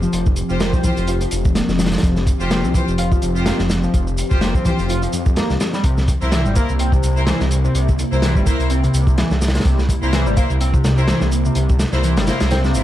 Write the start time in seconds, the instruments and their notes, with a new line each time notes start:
Already playing: ambient pad F3 C4 G4
0.02 analog synth lead F3, shaker
0.13 detuned saw bass F1, analog synth lead F3, closed hi-hat, shaker
0.26 kick, shaker
0.36 closed hi-hat, shaker
0.50 detuned saw bass F1, string section F4 G4 C5, shaker
0.60 analog synth lead A#3, snare, closed hi-hat, shaker
0.73 detuned saw bass C2, analog synth lead C4, kick, shaker
0.84 analog synth lead E3, string section F4 G4 C5, kick, closed hi-hat, shaker
0.97 detuned saw bass F1, closed hi-hat, shaker
1.07 analog synth lead F4, closed hi-hat, shaker
1.21 analog synth lead F3, closed hi-hat, shaker
1.31 detuned saw bass F1, closed hi-hat, shaker
1.45 kick, shaker
1.55 analog synth lead A#3, snare, closed hi-hat, shaker
1.69 detuned saw bass F1, snare, shaker
1.79 snare, closed hi-hat, shaker
1.86 snare, closed hi-hat
1.91 analog synth lead F3, snare, closed hi-hat, shaker
1.98 snare, closed hi-hat
2.03 detuned saw bass F1, analog synth lead F3, kick, closed hi-hat, shaker
2.16 snare, shaker
2.27 kick, closed hi-hat, shaker
2.40 detuned saw bass F1, string section F4 G4 C5, shaker
2.51 analog synth lead A#3, snare, closed hi-hat, shaker
2.64 detuned saw bass C2, analog synth lead C4, shaker
2.74 analog synth lead E3, string section F4 G4 C5, kick, closed hi-hat, shaker
2.88 detuned saw bass F1, shaker
2.98 analog synth lead F4, closed hi-hat, shaker
3.12 analog synth lead F3, kick, shaker
3.22 detuned saw bass F1, closed hi-hat, shaker
3.35 string section F4 G4 C5, shaker
3.46 analog synth lead A#3, snare, closed hi-hat, shaker
3.59 detuned saw bass F1, snare, shaker
3.70 snare, closed hi-hat, shaker
3.83 analog synth lead F3, shaker
3.94 detuned saw bass F1, analog synth lead F3, kick, closed hi-hat, shaker
4.07 shaker
4.18 closed hi-hat, shaker
4.31 detuned saw bass F1, string section F4 G4 C5, kick, shaker
4.41 analog synth lead A#3, snare, closed hi-hat, shaker
4.54 detuned saw bass C2, analog synth lead C4, kick, shaker
4.65 analog synth lead E3, string section F4 G4 C5, kick, closed hi-hat, shaker
4.79 detuned saw bass F1, closed hi-hat, shaker
4.89 analog synth lead F4, closed hi-hat, shaker
5.02 analog synth lead F3, closed hi-hat, shaker
5.13 detuned saw bass F2, closed hi-hat, shaker
5.26 kick, shaker
5.36 analog synth lead A#3, snare, closed hi-hat, shaker
5.50 detuned saw bass C2, snare, shaker
5.60 snare, closed hi-hat, shaker
5.73 analog synth lead G3, snare, shaker
5.84 detuned saw bass C2, ambient pad C3 A#3 E4, analog synth lead C3, kick, closed hi-hat, shaker
5.98 snare, shaker
6.08 kick, closed hi-hat, shaker
6.22 detuned saw bass C2, string section E4 A#4 C5, shaker
6.32 analog synth lead E3, snare, closed hi-hat, shaker
6.45 detuned saw bass G1, analog synth lead G3, shaker
6.55 analog synth lead A#3, string section E4 A#4 C5, kick, closed hi-hat, shaker
6.69 detuned saw bass C2, shaker
6.79 analog synth lead C4, closed hi-hat, shaker
6.92 analog synth lead C3, kick, shaker
7.03 detuned saw bass C2, closed hi-hat, shaker
7.17 string section E4 A#4 C5, shaker
7.27 analog synth lead E3, snare, closed hi-hat, shaker
7.41 detuned saw bass C2, snare, shaker
7.51 closed hi-hat, shaker
7.64 analog synth lead C3, shaker
7.75 detuned saw bass C2, analog synth lead C3, closed hi-hat, shaker
7.89 kick, shaker
7.99 closed hi-hat, shaker
8.12 detuned saw bass C2, string section E4 A#4 C5, shaker
8.22 analog synth lead E3, snare, closed hi-hat, shaker
8.35 detuned saw bass G1, analog synth lead G3, kick, shaker
8.46 analog synth lead A#3, string section E4 A#4 C5, kick, closed hi-hat, shaker
8.59 detuned saw bass C2, closed hi-hat, shaker
8.70 analog synth lead C4, closed hi-hat, shaker
8.84 analog synth lead C3, closed hi-hat, shaker
8.94 detuned saw bass C2, closed hi-hat, shaker
9.07 kick, shaker
9.18 analog synth lead E3, snare, closed hi-hat, shaker
9.31 detuned saw bass C2, snare, shaker
9.42 snare, closed hi-hat, shaker
9.48 snare, closed hi-hat
9.55 analog synth lead C3, snare, closed hi-hat, shaker
9.60 snare, closed hi-hat
9.65 detuned saw bass C2, analog synth lead C3, kick, closed hi-hat, shaker
9.79 snare, shaker
9.89 kick, closed hi-hat, shaker
10.02 detuned saw bass C2, string section E4 A#4 C5, shaker
10.13 analog synth lead E3, snare, closed hi-hat, shaker
10.26 detuned saw bass G1, analog synth lead G3, shaker
10.36 analog synth lead A#3, string section E4 A#4 C5, kick, closed hi-hat, shaker
10.50 detuned saw bass C2, shaker
10.61 analog synth lead C4, closed hi-hat, shaker
10.74 analog synth lead C3, kick, shaker
10.84 detuned saw bass C2, snare, closed hi-hat, shaker
10.98 string section E4 A#4 C5, shaker
11.08 analog synth lead E3, snare, closed hi-hat, shaker
11.21 detuned saw bass C2, snare, shaker
11.32 closed hi-hat, shaker
11.45 analog synth lead C3, shaker
11.55 detuned saw bass C2, analog synth lead C3, closed hi-hat, shaker
11.69 kick, shaker
11.79 snare, closed hi-hat, shaker
11.93 detuned saw bass C2, string section E4 A#4 C5, snare, shaker
12.03 analog synth lead E3, closed hi-hat, shaker
12.16 detuned saw bass G1, analog synth lead G3, snare, closed hi-hat, shaker
12.27 analog synth lead A#3, string section E4 A#4 C5, snare, closed hi-hat, shaker
12.40 detuned saw bass C2, snare, closed hi-hat, shaker
12.51 analog synth lead C4, snare, closed hi-hat, swell, shaker
12.64 analog synth lead C3, snare, shaker
12.75 detuned saw bass G1, string section E4 A#4 C5, closed hi-hat, shaker